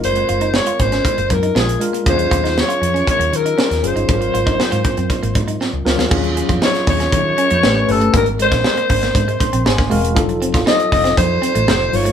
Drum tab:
CC |----------------|----------------|----------------|x---------------|
HH |xxxx-xxxxxxx-xxx|xxxx-xxxxxxx-xxx|xxxx-xxxxxxx----|-xxx-xoxx-xx--ox|
SD |----o--o----o---|---oo-------oo--|----o-------o-oo|----oo-o----o---|
BD |------o-o-o-----|o-o-----o-------|o--o--o-o-o-----|o--o--o-o-------|

CC |----------------|----------------|
HH |xxxx-xoxxxxx--ox|xxxx-xoxx-xx--ox|
SD |---oo--o----oo--|---oo--o----o---|
BD |o--o--o-o-o--o--|o--o--o-o-------|